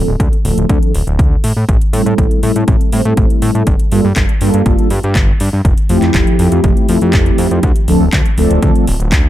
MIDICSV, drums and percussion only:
0, 0, Header, 1, 2, 480
1, 0, Start_track
1, 0, Tempo, 495868
1, 1632, Time_signature, 4, 2, 24, 8
1, 8994, End_track
2, 0, Start_track
2, 0, Title_t, "Drums"
2, 193, Note_on_c, 9, 36, 113
2, 194, Note_on_c, 9, 42, 70
2, 289, Note_off_c, 9, 36, 0
2, 291, Note_off_c, 9, 42, 0
2, 318, Note_on_c, 9, 42, 32
2, 415, Note_off_c, 9, 42, 0
2, 435, Note_on_c, 9, 46, 99
2, 532, Note_off_c, 9, 46, 0
2, 559, Note_on_c, 9, 42, 46
2, 656, Note_off_c, 9, 42, 0
2, 672, Note_on_c, 9, 36, 114
2, 673, Note_on_c, 9, 42, 67
2, 769, Note_off_c, 9, 36, 0
2, 769, Note_off_c, 9, 42, 0
2, 800, Note_on_c, 9, 42, 32
2, 896, Note_off_c, 9, 42, 0
2, 915, Note_on_c, 9, 46, 103
2, 1012, Note_off_c, 9, 46, 0
2, 1039, Note_on_c, 9, 42, 31
2, 1136, Note_off_c, 9, 42, 0
2, 1153, Note_on_c, 9, 36, 121
2, 1155, Note_on_c, 9, 42, 71
2, 1249, Note_off_c, 9, 36, 0
2, 1252, Note_off_c, 9, 42, 0
2, 1392, Note_on_c, 9, 46, 104
2, 1489, Note_off_c, 9, 46, 0
2, 1633, Note_on_c, 9, 36, 113
2, 1633, Note_on_c, 9, 42, 68
2, 1729, Note_off_c, 9, 36, 0
2, 1730, Note_off_c, 9, 42, 0
2, 1756, Note_on_c, 9, 42, 46
2, 1853, Note_off_c, 9, 42, 0
2, 1872, Note_on_c, 9, 46, 103
2, 1969, Note_off_c, 9, 46, 0
2, 1999, Note_on_c, 9, 42, 32
2, 2095, Note_off_c, 9, 42, 0
2, 2112, Note_on_c, 9, 36, 113
2, 2114, Note_on_c, 9, 42, 69
2, 2209, Note_off_c, 9, 36, 0
2, 2211, Note_off_c, 9, 42, 0
2, 2236, Note_on_c, 9, 42, 33
2, 2333, Note_off_c, 9, 42, 0
2, 2351, Note_on_c, 9, 46, 99
2, 2448, Note_off_c, 9, 46, 0
2, 2477, Note_on_c, 9, 42, 47
2, 2573, Note_off_c, 9, 42, 0
2, 2592, Note_on_c, 9, 36, 114
2, 2592, Note_on_c, 9, 42, 67
2, 2689, Note_off_c, 9, 36, 0
2, 2689, Note_off_c, 9, 42, 0
2, 2718, Note_on_c, 9, 42, 31
2, 2815, Note_off_c, 9, 42, 0
2, 2831, Note_on_c, 9, 46, 100
2, 2928, Note_off_c, 9, 46, 0
2, 2956, Note_on_c, 9, 42, 31
2, 3053, Note_off_c, 9, 42, 0
2, 3071, Note_on_c, 9, 42, 67
2, 3072, Note_on_c, 9, 36, 114
2, 3167, Note_off_c, 9, 42, 0
2, 3169, Note_off_c, 9, 36, 0
2, 3197, Note_on_c, 9, 42, 32
2, 3294, Note_off_c, 9, 42, 0
2, 3310, Note_on_c, 9, 46, 99
2, 3407, Note_off_c, 9, 46, 0
2, 3438, Note_on_c, 9, 42, 33
2, 3534, Note_off_c, 9, 42, 0
2, 3550, Note_on_c, 9, 42, 68
2, 3551, Note_on_c, 9, 36, 108
2, 3647, Note_off_c, 9, 42, 0
2, 3648, Note_off_c, 9, 36, 0
2, 3674, Note_on_c, 9, 42, 46
2, 3770, Note_off_c, 9, 42, 0
2, 3790, Note_on_c, 9, 46, 95
2, 3887, Note_off_c, 9, 46, 0
2, 4028, Note_on_c, 9, 42, 71
2, 4030, Note_on_c, 9, 39, 101
2, 4031, Note_on_c, 9, 36, 107
2, 4125, Note_off_c, 9, 42, 0
2, 4126, Note_off_c, 9, 39, 0
2, 4128, Note_off_c, 9, 36, 0
2, 4153, Note_on_c, 9, 42, 33
2, 4250, Note_off_c, 9, 42, 0
2, 4267, Note_on_c, 9, 46, 97
2, 4364, Note_off_c, 9, 46, 0
2, 4392, Note_on_c, 9, 42, 45
2, 4488, Note_off_c, 9, 42, 0
2, 4509, Note_on_c, 9, 42, 71
2, 4510, Note_on_c, 9, 36, 112
2, 4606, Note_off_c, 9, 42, 0
2, 4607, Note_off_c, 9, 36, 0
2, 4632, Note_on_c, 9, 42, 33
2, 4729, Note_off_c, 9, 42, 0
2, 4747, Note_on_c, 9, 46, 100
2, 4843, Note_off_c, 9, 46, 0
2, 4873, Note_on_c, 9, 42, 30
2, 4970, Note_off_c, 9, 42, 0
2, 4988, Note_on_c, 9, 42, 69
2, 4989, Note_on_c, 9, 36, 118
2, 4990, Note_on_c, 9, 39, 102
2, 5085, Note_off_c, 9, 42, 0
2, 5086, Note_off_c, 9, 36, 0
2, 5086, Note_off_c, 9, 39, 0
2, 5228, Note_on_c, 9, 46, 98
2, 5325, Note_off_c, 9, 46, 0
2, 5468, Note_on_c, 9, 36, 104
2, 5469, Note_on_c, 9, 42, 72
2, 5565, Note_off_c, 9, 36, 0
2, 5565, Note_off_c, 9, 42, 0
2, 5591, Note_on_c, 9, 42, 47
2, 5688, Note_off_c, 9, 42, 0
2, 5705, Note_on_c, 9, 46, 92
2, 5801, Note_off_c, 9, 46, 0
2, 5830, Note_on_c, 9, 42, 35
2, 5832, Note_on_c, 9, 39, 33
2, 5927, Note_off_c, 9, 42, 0
2, 5928, Note_off_c, 9, 39, 0
2, 5946, Note_on_c, 9, 42, 74
2, 5947, Note_on_c, 9, 39, 105
2, 5948, Note_on_c, 9, 36, 108
2, 6043, Note_off_c, 9, 42, 0
2, 6044, Note_off_c, 9, 39, 0
2, 6045, Note_off_c, 9, 36, 0
2, 6071, Note_on_c, 9, 42, 34
2, 6168, Note_off_c, 9, 42, 0
2, 6186, Note_on_c, 9, 46, 95
2, 6283, Note_off_c, 9, 46, 0
2, 6310, Note_on_c, 9, 42, 47
2, 6406, Note_off_c, 9, 42, 0
2, 6426, Note_on_c, 9, 42, 72
2, 6428, Note_on_c, 9, 36, 111
2, 6523, Note_off_c, 9, 42, 0
2, 6525, Note_off_c, 9, 36, 0
2, 6552, Note_on_c, 9, 42, 33
2, 6649, Note_off_c, 9, 42, 0
2, 6665, Note_on_c, 9, 46, 100
2, 6762, Note_off_c, 9, 46, 0
2, 6790, Note_on_c, 9, 42, 34
2, 6887, Note_off_c, 9, 42, 0
2, 6905, Note_on_c, 9, 42, 70
2, 6906, Note_on_c, 9, 39, 107
2, 6908, Note_on_c, 9, 36, 114
2, 7001, Note_off_c, 9, 42, 0
2, 7003, Note_off_c, 9, 39, 0
2, 7005, Note_off_c, 9, 36, 0
2, 7029, Note_on_c, 9, 42, 34
2, 7126, Note_off_c, 9, 42, 0
2, 7146, Note_on_c, 9, 46, 97
2, 7243, Note_off_c, 9, 46, 0
2, 7271, Note_on_c, 9, 42, 34
2, 7368, Note_off_c, 9, 42, 0
2, 7386, Note_on_c, 9, 42, 74
2, 7388, Note_on_c, 9, 36, 109
2, 7483, Note_off_c, 9, 42, 0
2, 7485, Note_off_c, 9, 36, 0
2, 7508, Note_on_c, 9, 42, 52
2, 7605, Note_off_c, 9, 42, 0
2, 7627, Note_on_c, 9, 46, 95
2, 7723, Note_off_c, 9, 46, 0
2, 7866, Note_on_c, 9, 42, 77
2, 7868, Note_on_c, 9, 39, 109
2, 7869, Note_on_c, 9, 36, 110
2, 7963, Note_off_c, 9, 42, 0
2, 7965, Note_off_c, 9, 36, 0
2, 7965, Note_off_c, 9, 39, 0
2, 7992, Note_on_c, 9, 42, 37
2, 8089, Note_off_c, 9, 42, 0
2, 8108, Note_on_c, 9, 46, 94
2, 8205, Note_off_c, 9, 46, 0
2, 8234, Note_on_c, 9, 42, 49
2, 8331, Note_off_c, 9, 42, 0
2, 8349, Note_on_c, 9, 36, 110
2, 8349, Note_on_c, 9, 42, 76
2, 8446, Note_off_c, 9, 36, 0
2, 8446, Note_off_c, 9, 42, 0
2, 8475, Note_on_c, 9, 42, 37
2, 8571, Note_off_c, 9, 42, 0
2, 8590, Note_on_c, 9, 46, 99
2, 8687, Note_off_c, 9, 46, 0
2, 8715, Note_on_c, 9, 42, 34
2, 8812, Note_off_c, 9, 42, 0
2, 8829, Note_on_c, 9, 36, 108
2, 8830, Note_on_c, 9, 42, 75
2, 8831, Note_on_c, 9, 39, 108
2, 8926, Note_off_c, 9, 36, 0
2, 8926, Note_off_c, 9, 42, 0
2, 8928, Note_off_c, 9, 39, 0
2, 8994, End_track
0, 0, End_of_file